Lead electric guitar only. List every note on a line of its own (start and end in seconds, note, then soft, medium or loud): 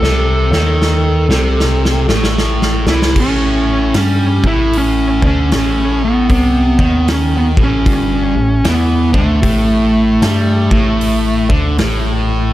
0.00 2.36 A4 medium
2.89 3.19 E4 loud
3.19 3.93 C#4 loud
3.97 4.47 C#4 medium
4.46 4.75 E4 medium
4.77 5.25 C#4 medium
5.26 5.99 C#4 medium
6.04 7.06 B3 medium
7.11 7.37 C#4 medium
7.37 7.44 B3 medium
7.63 8.63 C#4 medium
8.69 9.13 B3 medium
9.17 11.47 A3 medium